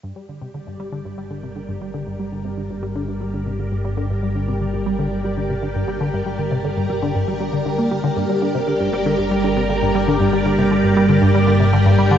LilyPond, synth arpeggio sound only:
\new Staff \with { instrumentName = "Synth arpeggio sound" } { \clef bass \time 4/4 \key g \minor \tempo 4 = 118 g,16 g16 d16 c16 d16 g,16 g16 d16 g,16 g16 d16 c16 d16 g,16 g16 d16 | g,16 g16 d16 c16 d16 g,16 g16 d16 g,16 g16 d16 c16 d16 g,16 g16 d16 | g,16 g16 d16 c16 d16 g,16 g16 d16 g,16 g16 d16 c16 d16 g,16 g16 d16 | g,16 g16 d16 c16 d16 g,16 g16 d16 g,16 g16 g16 d16 d16 bes16 g16 d16 |
g,16 g16 d16 c16 d16 g,16 g16 d16 g,16 g16 d16 c16 d16 g,16 g16 d16 | g,16 g16 d16 c16 d16 g,16 g16 d16 g,16 g16 d16 c16 d16 g,16 g16 d16 | }